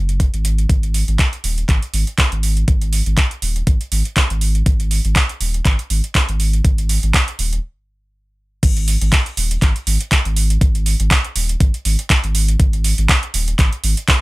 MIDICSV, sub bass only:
0, 0, Header, 1, 2, 480
1, 0, Start_track
1, 0, Tempo, 495868
1, 674, Time_signature, 4, 2, 24, 8
1, 13757, End_track
2, 0, Start_track
2, 0, Title_t, "Sub bass"
2, 0, Program_c, 0, 38
2, 0, Note_on_c, 0, 30, 102
2, 278, Note_off_c, 0, 30, 0
2, 325, Note_on_c, 0, 32, 104
2, 635, Note_off_c, 0, 32, 0
2, 674, Note_on_c, 0, 32, 98
2, 999, Note_off_c, 0, 32, 0
2, 1046, Note_on_c, 0, 32, 89
2, 1130, Note_off_c, 0, 32, 0
2, 1394, Note_on_c, 0, 27, 100
2, 1586, Note_off_c, 0, 27, 0
2, 1634, Note_on_c, 0, 32, 104
2, 1737, Note_off_c, 0, 32, 0
2, 1873, Note_on_c, 0, 32, 105
2, 1977, Note_off_c, 0, 32, 0
2, 2246, Note_on_c, 0, 32, 91
2, 2556, Note_off_c, 0, 32, 0
2, 2594, Note_on_c, 0, 32, 101
2, 2919, Note_off_c, 0, 32, 0
2, 2966, Note_on_c, 0, 32, 84
2, 3050, Note_off_c, 0, 32, 0
2, 3313, Note_on_c, 0, 27, 103
2, 3506, Note_off_c, 0, 27, 0
2, 3553, Note_on_c, 0, 32, 107
2, 3657, Note_off_c, 0, 32, 0
2, 3793, Note_on_c, 0, 32, 103
2, 3897, Note_off_c, 0, 32, 0
2, 4166, Note_on_c, 0, 32, 94
2, 4475, Note_off_c, 0, 32, 0
2, 4514, Note_on_c, 0, 32, 97
2, 4839, Note_off_c, 0, 32, 0
2, 4886, Note_on_c, 0, 32, 88
2, 4970, Note_off_c, 0, 32, 0
2, 5233, Note_on_c, 0, 27, 100
2, 5426, Note_off_c, 0, 27, 0
2, 5474, Note_on_c, 0, 32, 104
2, 5577, Note_off_c, 0, 32, 0
2, 5714, Note_on_c, 0, 32, 104
2, 5817, Note_off_c, 0, 32, 0
2, 6087, Note_on_c, 0, 32, 92
2, 6396, Note_off_c, 0, 32, 0
2, 6434, Note_on_c, 0, 32, 98
2, 6759, Note_off_c, 0, 32, 0
2, 6807, Note_on_c, 0, 32, 88
2, 6890, Note_off_c, 0, 32, 0
2, 7153, Note_on_c, 0, 27, 99
2, 7346, Note_off_c, 0, 27, 0
2, 8354, Note_on_c, 0, 32, 102
2, 8679, Note_off_c, 0, 32, 0
2, 8726, Note_on_c, 0, 32, 92
2, 8810, Note_off_c, 0, 32, 0
2, 9074, Note_on_c, 0, 27, 101
2, 9266, Note_off_c, 0, 27, 0
2, 9314, Note_on_c, 0, 32, 104
2, 9417, Note_off_c, 0, 32, 0
2, 9553, Note_on_c, 0, 32, 104
2, 9656, Note_off_c, 0, 32, 0
2, 9926, Note_on_c, 0, 32, 93
2, 10236, Note_off_c, 0, 32, 0
2, 10274, Note_on_c, 0, 32, 100
2, 10599, Note_off_c, 0, 32, 0
2, 10647, Note_on_c, 0, 32, 87
2, 10730, Note_off_c, 0, 32, 0
2, 10994, Note_on_c, 0, 27, 99
2, 11186, Note_off_c, 0, 27, 0
2, 11234, Note_on_c, 0, 32, 108
2, 11337, Note_off_c, 0, 32, 0
2, 11475, Note_on_c, 0, 32, 111
2, 11578, Note_off_c, 0, 32, 0
2, 11848, Note_on_c, 0, 32, 92
2, 12156, Note_off_c, 0, 32, 0
2, 12194, Note_on_c, 0, 32, 99
2, 12519, Note_off_c, 0, 32, 0
2, 12567, Note_on_c, 0, 32, 89
2, 12650, Note_off_c, 0, 32, 0
2, 12914, Note_on_c, 0, 27, 104
2, 13106, Note_off_c, 0, 27, 0
2, 13154, Note_on_c, 0, 32, 105
2, 13257, Note_off_c, 0, 32, 0
2, 13394, Note_on_c, 0, 32, 106
2, 13497, Note_off_c, 0, 32, 0
2, 13757, End_track
0, 0, End_of_file